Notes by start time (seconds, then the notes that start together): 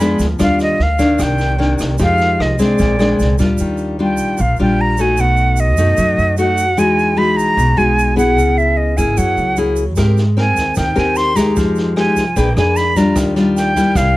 Already playing: F2 F3 B5
0.00 G#3 B3 D4, snare, shaker
0.19 D2, kick, snare, shaker
0.39 D#2 G3 D4 F4 F5, kick, cross-stick, snare, shaker
0.59 D#5, snare, shaker
0.79 D2 F5, snare
0.99 D#3 A#3 D4, kick, snare, shaker
1.19 C2 C3, kick, cross-stick, snare, shaker
1.23 G5
1.38 snare, shaker
1.58 D#3 A#3 D4, snare
1.79 C2, kick, cross-stick, snare, shaker
1.98 F2 F3 G#3 D#4 G4, kick, snare, shaker
2.03 F5
2.18 snare, shaker
2.39 C2 D#5, cross-stick, snare
2.59 G#3 C4 D4 D5, kick, snare, shaker
2.78 A#1 A#2, kick, snare, shaker
2.99 G#3 C4 D4, cross-stick, snare, shaker
3.19 C2, snare, shaker
3.38 D2 G3 D4 F4, kick, snare, shaker
3.58 D#2 D#3, shaker
3.77 shaker
3.99 G3 D4 F4 G5
4.17 A#1, shaker
4.38 A#1 A#2 F5, shaker
4.56 A#1 G3 D4 F4, shaker
4.62 G5
4.81 A#5
4.97 A3 D#4 F#4 G#5, shaker
5.17 B1 B2 F#5, shaker
5.37 shaker
5.57 D#5, shaker
5.77 F#2 A3 D#4 F#4, shaker
5.97 F#2 F#3, shaker
6.18 F#2, shaker
6.37 A3 D#4 F#4 F#5, shaker
6.57 shaker
6.77 E2 E3 G#3 D#4 F#4 G#5, shaker
6.99 shaker
7.17 G#3 D#4 F#4 B5
7.37 B1 A#5, shaker
7.57 B1 B2, shaker
7.77 B1 G#3 D#4 F#4 G#5, shaker
7.99 shaker
8.16 B3 E4 G#4 F#5, shaker
8.37 C#2 C#3, shaker
8.58 E5, shaker
8.77 D#5
8.97 G#1 A#3 E4 G#4 G#5, shaker
9.17 F#2 F#3 F#5, shaker
9.37 C#2, shaker
9.57 A#3 E4 G#4, shaker
9.76 shaker
9.96 G#2 G#3 C4 G4 A#4, kick, cross-stick, snare, shaker
10.17 snare, shaker
10.37 C4 A#4 G#5, snare
10.56 D#2, kick, snare, shaker
10.75 D#2 D#3 G5, kick, cross-stick, snare, shaker
10.95 D#2 C4 G4 A#4 G#5, snare, shaker
11.15 C6, snare, shaker
11.35 G#3 D#4 G4 A#5, kick, cross-stick, snare, shaker
11.56 F2 F3, kick, snare, shaker
11.75 snare, shaker
11.96 G#3 D#4 G4 G#5, cross-stick, snare
12.16 C2, kick, snare, shaker
12.36 A#1 A#3 D4 G#4 B4 G5, kick, snare, shaker
12.57 F2 D4 G#4 B4 G#5, cross-stick, snare, shaker
12.76 B5, snare, shaker
12.96 G3 D4 F4 A#5, kick, snare, shaker
13.15 D#2 D#3, kick, cross-stick, snare, shaker
13.36 G3 D4 F4, snare, shaker
13.56 G5, snare, shaker
13.75 D2 G3 A#3 E4, kick, snare, shaker
13.95 C2 C3 F5, kick, cross-stick, snare, shaker